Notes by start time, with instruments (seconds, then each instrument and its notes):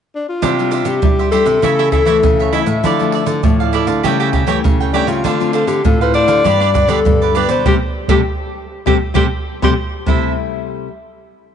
0.15 alto saxophone D4
0.29 alto saxophone F4
0.42 nylon-string guitar C3 G3 D4 E4, cavaquinho D4 G4 C5 E5, pandeiro, shaker, surdo
0.59 nylon-string guitar G3 D4 E4, pandeiro, shaker
0.71 cavaquinho D4 G4 C5 E5, pandeiro, shaker
0.85 nylon-string guitar C3, alto saxophone G4, pandeiro, shaker
1.02 nylon-string guitar G3 D4 E4, pandeiro, shaker, surdo
1.19 cavaquinho G4 C5 E5, pandeiro, shaker
1.31 nylon-string guitar G3 D4 E4, cavaquinho D4 G4 C5 E5, alto saxophone A4, pandeiro, shaker
1.46 nylon-string guitar C3, cavaquinho G4 C5 E5, pandeiro, shaker
1.62 nylon-string guitar C#3 E3 A3 E4, cavaquinho E4 A4 C#5 E5, pandeiro, shaker, surdo
1.79 cavaquinho E4 A4 C#5 E5, pandeiro, shaker
1.92 cavaquinho E4 A4 C#5 E5, alto saxophone A4, pandeiro, shaker, surdo
2.05 nylon-string guitar E3 A3 E4, cavaquinho E4 A4 C#5 E5, pandeiro, shaker
2.23 nylon-string guitar C#3, pandeiro, shaker, surdo
2.40 cavaquinho A4 C#5 E5, pandeiro, shaker
2.52 nylon-string guitar E3 A3 E4, cavaquinho E4 A4 C#5 E5, alto saxophone E4, pandeiro
2.66 nylon-string guitar A2, cavaquinho A4 C#5 E5, pandeiro, shaker
2.83 nylon-string guitar D3 F3 A3 E4, cavaquinho E4 A4 D5 F5, pandeiro, shaker, surdo
2.99 nylon-string guitar F3 A3 E4, pandeiro, shaker
3.12 cavaquinho A4 D5, pandeiro
3.26 nylon-string guitar D3, pandeiro, shaker
3.43 nylon-string guitar A2 F3 A3 E4, pandeiro, shaker, surdo
3.60 cavaquinho A4 D5 F5, pandeiro, shaker
3.73 cavaquinho E4 A4 D5 F5, pandeiro, shaker
3.87 nylon-string guitar D3, cavaquinho A4 D5 F5, pandeiro, shaker
4.03 nylon-string guitar C#3 G3 A3 E4, cavaquinho G4 A4 C#5 G5, pandeiro, shaker, surdo
4.20 cavaquinho G4 A4 C#5 G5, pandeiro, shaker
4.33 cavaquinho G4 A4 C#5 G5, pandeiro, shaker, surdo
4.46 nylon-string guitar E3 G3 A3 E4, cavaquinho G4 A4 C#5 G5, pandeiro, shaker
4.64 nylon-string guitar C#3, pandeiro, shaker, surdo
4.80 cavaquinho A4 C#5 G5, pandeiro, shaker
4.93 nylon-string guitar G3 A3 E4, alto saxophone D4, cavaquinho G4 A4 C#5 G5, pandeiro, shaker
5.07 nylon-string guitar C#3, alto saxophone F4, cavaquinho C#5 G5, pandeiro, shaker
5.24 nylon-string guitar D3 A3 C4 F4, cavaquinho D4 A4 C5 F5, pandeiro, shaker, surdo
5.40 nylon-string guitar A3 C4 F4, pandeiro, shaker
5.53 cavaquinho D4 A4 C5 F5, alto saxophone A4, pandeiro, shaker
5.67 nylon-string guitar D3, alto saxophone G4, pandeiro, shaker
5.85 nylon-string guitar A2 A3 C4 F4, alto saxophone A4, pandeiro, shaker, surdo
6.01 cavaquinho A4 C5 F5, alto saxophone B4, pandeiro, shaker
6.14 cavaquinho D4 A4 C5 F5, alto saxophone D5, pandeiro
6.27 nylon-string guitar D3, cavaquinho A4 C5 F5, pandeiro, shaker
6.44 nylon-string guitar G2 G3 B3 D4, cavaquinho D4 G4 B4 D5, pandeiro, shaker, surdo
6.60 cavaquinho D4 G4 B4 D5, pandeiro, shaker
6.74 cavaquinho D4 G4 B4 D5, pandeiro, shaker, surdo
6.87 nylon-string guitar D3 G3 B3 D4, cavaquinho D4 G4 B4 D5, alto saxophone A4, pandeiro, shaker
7.05 nylon-string guitar G2 D3, pandeiro, shaker, surdo
7.22 cavaquinho G4 B4 D5, pandeiro, shaker
7.35 nylon-string guitar G3 B3 D4, cavaquinho D4 G4 B4 D5, alto saxophone B4, pandeiro, shaker
7.48 nylon-string guitar B2, cavaquinho G4 B4 D5, alto saxophone C5, pandeiro, shaker
7.65 nylon-string guitar C3 G3 A3 C4, cavaquinho G4 A4 C5, alto saxophone G4, surdo
8.08 nylon-string guitar C3 G3 A3 C4, cavaquinho G4 A4 C5, alto saxophone G4, surdo
8.86 nylon-string guitar C3 G3 A3 C4, cavaquinho G4 A4 C5, alto saxophone G4, surdo
9.14 nylon-string guitar C3 G3 A3 C4, cavaquinho G4 A4 C5, alto saxophone G4, surdo
9.62 nylon-string guitar C3 G3 A3 C4, cavaquinho G4 A4 C5, alto saxophone G4, surdo
10.06 nylon-string guitar C3 G3 A3 E4, cavaquinho E4 A4 C5 E5, surdo